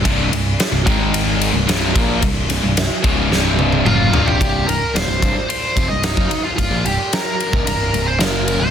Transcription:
0.04 picked electric bass C1, overdriven electric guitar C2 G2 C3, kick, ride
0.31 picked electric bass C1, overdriven electric guitar C2 G2, ride
0.60 snare, ride
0.73 picked electric bass C1, overdriven electric guitar C2 G2
0.86 picked electric bass G#1, overdriven electric guitar G#2 D#3 G#3, kick, ride
1.14 ride
1.41 ride
1.54 picked electric bass C1, overdriven electric guitar C2 G2
1.67 picked electric bass C1, overdriven electric guitar C2 G2 C3, snare, ride
1.95 picked electric bass A#1, overdriven electric guitar A#2 F3 A#3, kick, ride
2.22 picked electric bass C1, overdriven electric guitar C2 G2, kick, ride
2.49 picked electric bass C1, overdriven electric guitar C2 G2, snare, ride
2.63 picked electric bass C1, overdriven electric guitar C2 G2
2.77 snare, ride
3.04 picked electric bass C#1, overdriven electric guitar C#2 G#2 C#3, kick, ride
3.30 picked electric bass C1, overdriven electric guitar C2 G2 C3, snare
3.59 high tom
3.72 high tom
3.85 picked electric bass F#1, overdriven electric guitar F#2 C#3 F#3, lead electric guitar F4, mid tom
4.12 picked electric bass C1, overdriven electric guitar C2 G2 C3, floor tom
4.26 lead electric guitar G4, floor tom
4.39 picked electric bass C1, overdriven electric guitar C2 G2 C3, lead electric guitar G4, kick, ride
4.67 picked electric bass C1, overdriven electric guitar C2 G2, lead electric guitar A#4, ride
4.80 muted overdriven electric guitar stroke, muted picked electric bass stroke, muted distorted electric guitar stroke
4.94 picked electric bass D#1, overdriven electric guitar D#2 A#2, lead electric guitar C5, snare, ride
5.08 picked electric bass C1, overdriven electric guitar C2 G2
5.21 picked electric bass C1, overdriven electric guitar C2 G2, kick, ride
5.35 muted overdriven electric guitar stroke, muted picked electric bass stroke, muted distorted electric guitar stroke
5.49 lead electric guitar C5, ride
5.76 picked electric bass F1, overdriven electric guitar F2 C3, kick, ride
5.89 picked electric bass C1, overdriven electric guitar C2 G2, lead electric guitar D#5
6.03 lead electric guitar D#4, snare, ride
6.16 picked electric bass F#1, overdriven electric guitar F#2 C#3, kick
6.30 muted overdriven electric guitar stroke, muted distorted electric guitar stroke, ride
6.44 lead electric guitar F4
6.57 picked electric bass C1, overdriven electric guitar C2 G2, lead electric guitar F4, kick, ride
6.71 picked electric bass A#1, overdriven electric guitar A#2 F3
6.85 picked electric bass C1, overdriven electric guitar C2 G2, lead electric guitar G4, ride
6.98 muted distorted electric guitar stroke, muted picked electric bass stroke, muted overdriven electric guitar stroke
7.13 lead electric guitar A#4, snare, ride
7.40 ride
7.53 picked electric bass C1, overdriven electric guitar C2 G2, kick
7.66 picked electric bass C1, overdriven electric guitar C2 G2, lead electric guitar A#4, ride
7.93 picked electric bass C1, overdriven electric guitar C2 G2, ride
8.07 lead electric guitar C5
8.20 picked electric bass F#1, overdriven electric guitar F#2 C#3 F#3, lead electric guitar A#4, snare, ride
8.48 ride
8.60 picked electric bass C1, overdriven electric guitar C2 G2, lead electric guitar C5

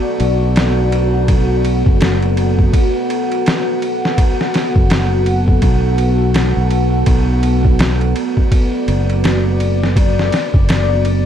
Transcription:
Already playing: ambient pad B3 F#4 A4 D5
0.20 fingered electric bass B1, ride
0.56 snare, ride
0.92 ride
1.28 ambient pad F#5, kick, ride
1.65 ride
1.86 fingered electric bass F#1, kick
2.01 snare, ride
2.22 ride
2.37 ride
2.59 kick
2.73 kick, ride
3.10 ride
3.32 ride
3.46 snare, ride
3.82 ride
4.05 snare
4.18 kick, ride
4.41 snare
4.54 snare, ride
4.76 fingered electric bass F#1, kick
4.90 snare, ride
5.26 ride
5.48 kick
5.62 fingered electric bass B1, kick, ride
5.98 ride
6.34 snare, ride
6.57 fingered electric bass B1
6.71 ride
7.06 fingered electric bass B1, ambient pad D5, kick, ride
7.43 ride
7.65 kick
7.79 snare, ride
8.01 ride
8.16 ride
8.37 kick
8.52 kick, ride
8.88 fingered electric bass F#1, ride
9.10 ride
9.24 snare, ride
9.60 ride
9.83 snare
9.96 kick, ride
10.19 snare
10.32 snare, ride
10.54 fingered electric bass F#1, kick
10.69 snare, ride
11.05 ride

